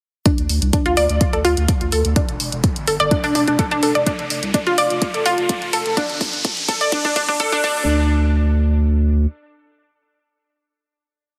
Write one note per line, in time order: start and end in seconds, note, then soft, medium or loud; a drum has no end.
0.26 0.29 D4 medium
0.26 kick loud
0.26 closed hi-hat medium
0.26 riser medium
0.38 0.47 D2 medium
0.38 closed hi-hat soft
0.49 0.59 D2 medium
0.49 open hi-hat loud
0.62 0.71 C2 medium
0.62 closed hi-hat soft
0.73 0.80 D4 medium
0.73 kick loud
0.73 closed hi-hat medium
0.86 0.95 D2 medium
0.86 0.92 F4 loud
0.86 closed hi-hat soft
0.97 1.07 D2 medium
0.97 1.03 D5 loud
0.97 open hi-hat loud
1.09 1.19 D2 medium
1.09 closed hi-hat soft
1.21 kick loud
1.21 closed hi-hat medium
1.33 1.43 D2 medium
1.33 1.39 A4 medium
1.33 closed hi-hat soft
1.45 1.55 D2 loud
1.45 1.48 F4 loud
1.45 open hi-hat loud
1.57 1.66 D2 medium
1.57 closed hi-hat soft
1.68 kick loud
1.68 closed hi-hat medium
1.81 1.90 D2 medium
1.81 closed hi-hat soft
1.92 2.02 D2 loud
1.92 1.96 A4 medium
1.92 open hi-hat loud
2.05 2.14 D2 medium
2.05 closed hi-hat soft
2.16 2.20 D4 medium
2.16 kick loud
2.16 closed hi-hat medium
2.29 2.38 E1 medium
2.29 closed hi-hat soft
2.40 2.50 E1 loud
2.40 open hi-hat loud
2.52 2.62 E1 medium
2.52 closed hi-hat soft
2.64 kick loud
2.64 closed hi-hat medium
2.76 2.85 G1 medium
2.76 closed hi-hat soft
2.87 2.98 G1 medium
2.87 2.91 A4 medium
2.87 open hi-hat loud
3.00 3.09 G1 medium
3.00 3.04 D5 loud
3.00 closed hi-hat soft
3.11 3.18 D4 medium
3.11 kick loud
3.11 closed hi-hat medium
3.24 3.33 E1 medium
3.24 3.30 D4 loud
3.24 open hi-hat medium
3.35 3.45 E1 loud
3.35 3.39 D4 medium
3.35 open hi-hat loud
3.48 3.57 E1 medium
3.48 3.51 D4 medium
3.48 closed hi-hat soft
3.59 3.65 A4 medium
3.59 kick loud
3.59 closed hi-hat medium
3.71 3.81 E1 medium
3.71 3.75 D4 loud
3.71 closed hi-hat soft
3.83 3.93 E1 loud
3.83 3.87 A4 medium
3.83 open hi-hat loud
3.95 4.04 E1 medium
3.95 4.01 D5 medium
3.95 closed hi-hat soft
4.06 4.10 D4 medium
4.06 kick loud
4.06 closed hi-hat medium
4.19 4.28 F1 medium
4.19 closed hi-hat soft
4.30 4.40 F1 loud
4.30 open hi-hat loud
4.43 4.52 C2 medium
4.43 closed hi-hat soft
4.54 4.61 D4 medium
4.54 kick loud
4.54 closed hi-hat medium
4.67 4.76 F1 medium
4.67 4.73 F4 loud
4.67 closed hi-hat soft
4.78 4.88 F1 loud
4.78 4.84 D5 loud
4.78 open hi-hat loud
4.90 5.00 F1 medium
4.90 closed hi-hat soft
5.02 kick loud
5.02 closed hi-hat medium
5.14 5.23 F1 medium
5.14 5.20 A4 medium
5.14 closed hi-hat soft
5.25 5.36 F1 loud
5.25 5.30 F4 loud
5.25 open hi-hat loud
5.38 5.47 F1 medium
5.38 closed hi-hat soft
5.49 kick loud
5.49 closed hi-hat medium
5.62 5.71 F1 medium
5.62 closed hi-hat soft
5.73 5.83 F1 loud
5.73 5.77 A4 medium
5.73 open hi-hat loud
5.86 5.95 F1 medium
5.86 closed hi-hat soft
5.97 6.01 D4 medium
5.97 kick loud
5.97 closed hi-hat medium
6.10 6.19 G1 medium
6.10 closed hi-hat soft
6.21 6.31 G1 loud
6.21 kick loud
6.21 open hi-hat loud
6.33 6.42 G1 medium
6.33 closed hi-hat soft
6.45 kick loud
6.45 closed hi-hat medium
6.57 6.66 A1 medium
6.57 closed hi-hat soft
6.68 6.79 A1 loud
6.68 6.72 A4 medium
6.68 kick loud
6.68 open hi-hat loud
6.81 6.90 A1 medium
6.81 6.84 D5 loud
6.81 closed hi-hat soft
6.92 6.99 D4 medium
6.92 kick loud
6.92 closed hi-hat medium
7.05 7.14 G1 medium
7.05 7.11 D4 loud
7.05 kick medium
7.05 open hi-hat medium
7.16 7.26 G1 loud
7.16 7.20 D4 medium
7.16 kick loud
7.16 open hi-hat loud
7.28 7.38 G1 loud
7.28 7.32 D4 medium
7.28 kick medium
7.28 closed hi-hat soft
7.40 7.46 A4 medium
7.40 kick loud
7.40 closed hi-hat medium
7.52 7.62 G1 medium
7.52 7.56 D4 loud
7.52 kick loud
7.52 closed hi-hat soft
7.64 9.26 D2 loud
7.64 8.08 D4 medium
7.64 kick loud
7.64 crash medium